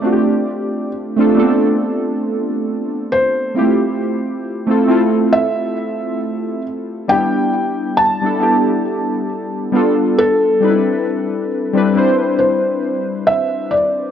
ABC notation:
X:1
M:4/4
L:1/16
Q:"Swing 16ths" 1/4=68
K:C
V:1 name="Felt piano"
d4 z8 z2 c2- | c8 e6 z2 | g4 a8 z2 A2- | A6 z2 c4 e2 d2 |]
V:2 name="Synth keys"
[A,CDF^FG]4 z [A,CD=FA] [A,B,CDFA]6 z4 | [G,A,CEFG]4 z [A,CEFA] [A,CEFA]6 z4 | [G,B,DEG]4 z [G,B,DEA] [G,B,DEG]6 [G,B,DFA]3 z | [G,CD_E=EB]4 z [G,CDEB] [G,CDEc]6 z4 |]